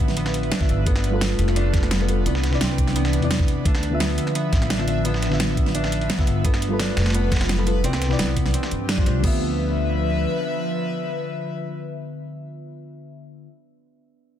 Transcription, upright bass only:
Already playing: A1
0.69 G1
1.39 F1
2.26 C2
2.61 C2
3.22 E2
3.65 D2
4.53 A1
6.27 G1
6.97 F1
7.84 C2
8.19 C2
8.71 G2
9.06 C2
9.24 D2

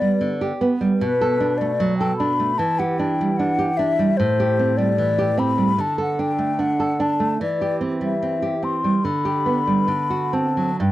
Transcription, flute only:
Already playing: D5
0.98 B4
1.58 D5
1.98 G5
2.17 B5
2.58 A5
2.79 F#5
2.98 G5
3.37 F#5
3.77 E5
4.17 C5
4.77 D5
5.39 B5
5.81 A5
6.01 F#5
6.20 G5
6.60 F#5
7.01 A5
7.42 D5
8.04 E5
8.64 C6
9.04 B5
10.34 A5
10.81 G5

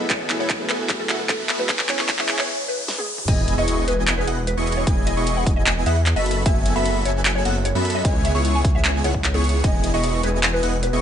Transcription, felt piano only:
0.00 F#3 A3 B3 E4 G#4
0.29 F#3 A3 B3 E4 G#4
0.59 F#3 A3 B3 E4 G#4
0.88 F#3 A3 B3 E4 G#4
1.18 F#3 A3 B3 E4 A4
1.58 F#3 A3 B3 E4 G#4
1.88 E3 G#3 B3 C#4 G#4
2.18 E3 G#3 B3 C#4 G#4

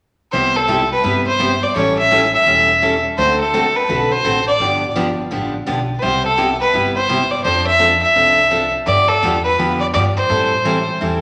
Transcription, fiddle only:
0.33 C5
0.56 A4
0.92 B4
1.28 C5
1.63 D5
1.76 C#5
1.99 E5
2.35 E5
3.18 C5
3.41 A4
3.77 B4
4.12 C5
4.48 D5
5.99 B4 C5
6.25 A4
6.61 B4
6.96 C5
7.31 D5
7.44 C5
7.67 E5
8.03 E5
8.87 D5
9.09 A4
9.44 B4
9.80 D5
9.94 D5
10.17 C5

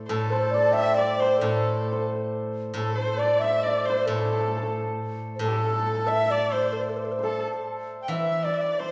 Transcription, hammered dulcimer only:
Already playing: C5 D5 E5
0.09 A4
0.32 C5
0.54 D5
0.71 E5 G5
0.98 D5
1.22 C5
1.43 A4
1.92 C5
2.77 A4
3.01 C5
3.22 D5
3.44 E5
3.66 D5
3.90 C5
4.12 A4
4.19 A4
4.25 A4
4.33 A4
4.39 A4
4.48 A4
4.57 A4
4.63 A4
5.44 A4
5.50 A4
5.58 A4
5.65 A4
5.73 A4
5.79 A4
5.86 A4
5.95 A4
6.07 E5
6.26 E5
6.32 D5
6.53 C5
7.19 C5
7.23 A4
8.12 E5
8.45 D5
8.80 C5

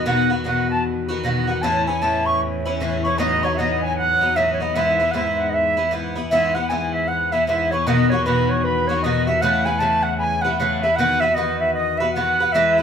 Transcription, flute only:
0.06 F#5
0.46 F#5
0.70 A5
1.48 F#5
1.62 A5
1.87 G#5
2.02 A5
2.26 C#6
3.05 C#5
3.20 D#5
3.45 C#5
3.59 D#5
3.83 G#5
3.98 F#5
4.36 E5
4.53 C#5
4.61 D#5
4.76 E5
5.11 E5 F#5
5.49 D#5 E5
6.30 E5
6.55 F#5
6.69 G#5
6.93 E5
7.08 F#5
7.32 E5
7.47 E5
7.71 C#5
7.86 D#5
8.10 C#5
8.25 B4
8.49 C#5
8.64 B4
8.87 C#5
9.02 D#5
9.26 E5
9.41 F#5
9.65 G#5
9.79 A5
10.03 F#5
10.18 G#5
10.42 F#5
10.57 F#5
10.81 E5
10.96 F#5
11.20 E5
11.35 D#5
11.60 E5
11.74 D#5
11.98 E5
12.13 F#5
12.52 E5

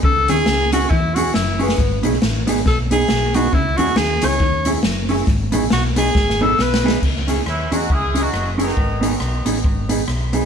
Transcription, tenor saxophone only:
0.04 A4
0.30 G#4
0.73 F#4
0.90 E4
1.15 F#4
1.35 E4
1.63 B3
2.67 A4
2.92 G#4
3.36 F#4
3.54 E4
3.77 F#4
3.97 G#4
4.26 C#5
5.73 F#4
5.98 G#4
6.43 A4
6.61 B4

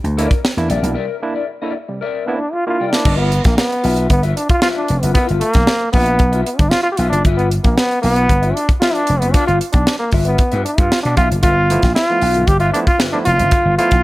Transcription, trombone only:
2.26 B3
2.39 D4
2.53 F4
2.67 F4
2.91 D4
3.18 B3
3.45 A#3
3.58 B3
4.10 B3
4.37 D4
4.50 F4
4.62 F4
4.76 D4
5.01 B3
5.14 B3
5.40 A#3
5.92 B3
6.44 B3
6.57 D4
6.70 F4
6.83 F4
6.92 G4
6.97 F4
7.10 D4
7.37 B3
7.64 A#3
7.77 B3
8.02 B3
8.54 D4
8.80 F4
8.94 D4
9.20 B3
9.33 D4
9.47 F4
9.72 D4
9.99 A#3
10.26 B3
10.65 D4
10.79 F4
11.03 D4
11.17 F4
11.43 F4
11.95 F4
12.47 G4
12.60 F4
12.73 D4
12.87 F4
13.12 D4
13.25 F4
13.78 F4

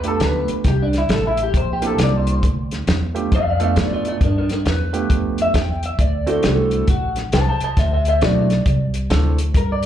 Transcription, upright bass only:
Already playing: E2
0.20 D2
0.48 muted upright bass stroke
0.65 C2
1.09 A1
1.54 A#1
1.98 C2
2.43 D2
2.88 E2
3.32 F2
3.77 A2
4.21 G2
4.66 E2
5.10 F2
5.54 E2
5.99 D2
6.44 C2
6.88 A1
7.33 C2
7.61 muted upright bass stroke
7.77 D2
8.22 B1
8.66 C2
9.10 D2
9.55 G2

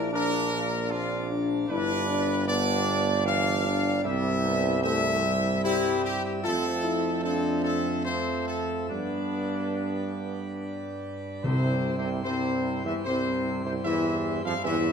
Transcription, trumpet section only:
0.13 A#4
0.91 F4
1.69 B4
2.47 D5
3.26 F5
4.05 E5
4.84 E5
5.64 E4
6.04 G4
6.25 G4
6.43 A4
7.24 A4
7.64 A4
8.05 C5
8.47 A4
8.89 D4
11.44 C5
11.98 C5
12.24 C5
12.85 E5
13.04 C5
13.65 C5
13.85 E5
14.45 F5
14.65 E5

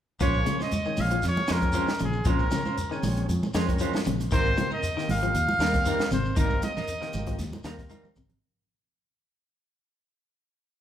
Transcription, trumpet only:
0.22 C#5
0.62 D#5
1.01 F5
1.28 C#5
1.52 A#4
2.04 G#4
2.29 A#4
4.33 C5
4.73 D#5
5.11 F5
6.13 C5
6.39 A#4
6.64 D#5

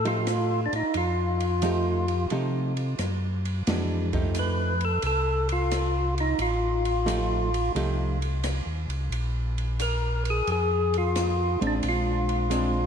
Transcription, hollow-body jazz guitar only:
0.05 F3 A3 D#4 G4
1.63 F3 A3 D#4 G4
2.31 F3 A3 D#4 G4
3.68 E3 G#3 D4 F#4
4.13 F3 A3 D#4 G4
7.06 F3 A3 D#4 G4
7.76 F3 A3 D#4 G4
11.61 G#3 C4 D4
12.50 G#3 C4 D4

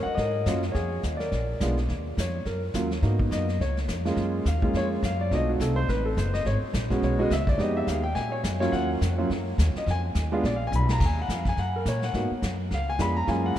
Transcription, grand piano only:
0.03 D#5 F#5
0.15 D#5
0.19 A#4
0.47 F#3 A#3 C#4 F4
0.72 G#4 C#5
1.17 A#4 D5
1.61 G#3 B3 D4 F4
2.20 C#5
2.47 A#4
2.75 F#3 A#3 C#4 F4
3.02 A#3 B3 D#4 F#4
3.32 D#5
3.61 C#5
4.05 G#3 A#3 C#4 F4
4.48 F5
4.62 G#3 A#3 C#4 F4
4.77 C#5
5.05 F5
5.21 D5
5.31 A3 C4 D#4 F#4 D#5
5.49 F#4
5.61 A4
5.76 C5
5.89 B4
6.05 A4
6.18 C5
6.34 D#5
6.46 C#5
6.90 G#3 B3 C#4 F#4
7.04 C#5
7.19 G#3 B3 C#4 F#4 D#5
7.33 E5
7.49 D5
7.58 G#3 B3 D#4 G4 D#5
7.77 E5
7.87 F5
8.04 G5
8.15 G#5
8.32 C#5
8.60 F#3 A#3 C#4 F4 C#5
8.72 F#5
9.18 F#3 A#3 C#4 F4
9.78 D#5
9.91 G#5
10.32 G#3 B3 D4 F4
10.46 D5
10.56 F5
10.67 G#5
10.76 B5
10.92 A#5
11.06 G#5
11.22 F#5
11.33 F5
11.49 G#5
11.59 F#5
11.76 A#4
11.88 C#5
12.04 F#5
12.14 A#3 B3 D#4 F#4
12.74 F5
12.90 G#5
12.99 G#3 B3 D4 F4 B5
13.17 A#5
13.27 G#3 A#3 C#4 F4 G#5
13.46 F#5

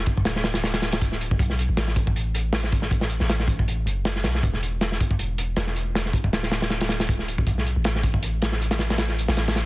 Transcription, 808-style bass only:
0.18 D1
1.39 B1
1.69 A1
3.21 A1
3.86 F#1
4.24 B1
4.43 E1
5.19 E1
5.57 E1
6.24 D1
7.47 B1
7.76 A1
9.28 A1

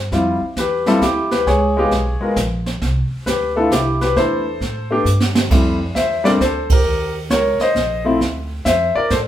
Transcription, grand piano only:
0.12 G3 C4 E4 F4
0.58 G4 B4
0.87 G3 C4 E4 F4 A4
1.03 E4 G4
1.32 G4 B4
1.47 G#4 C#5
1.77 G#3 B3 F4 G4
2.21 G#3 B3 F4 A#4
3.26 G4 B4
3.56 A3 B3 D4 E4 F4 A4
3.72 E4 G4
4.01 G4 B4
4.16 A3 B3 D4 E4 A4 C5
4.91 A3 B3 D4 G4
5.51 G3 A3 C4 E4
5.95 C5 E5
6.24 G3 A3 C4 D4 A#4 D5
6.41 A4 C5
6.72 G4 A#4
7.31 A#4 C#5
7.61 C5 D#5
8.04 F3 A3 C4 E4
8.65 C5 E5
8.95 A#4 D5
9.11 A4 C5

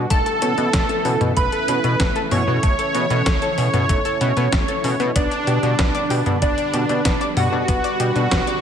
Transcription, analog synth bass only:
0.10 B1
0.42 B2
0.58 B2
0.74 B1
1.05 B2
1.21 B2
1.37 B1
1.68 B2
1.84 B2
2.00 B1
2.32 B2
2.47 B2
2.63 B1
2.95 B2
3.10 B2
3.26 B1
3.58 B2
3.74 B2
3.89 B1
4.21 B2
4.37 B2
4.53 B1
4.84 B2
5.00 B2
5.16 B1
5.47 B2
5.63 B2
5.79 B1
6.10 B2
6.26 B2
6.42 B1
6.74 B2
6.89 B2
7.05 B1
7.37 B2
7.53 B2
7.68 B1
8.00 B2
8.16 B2
8.32 B1

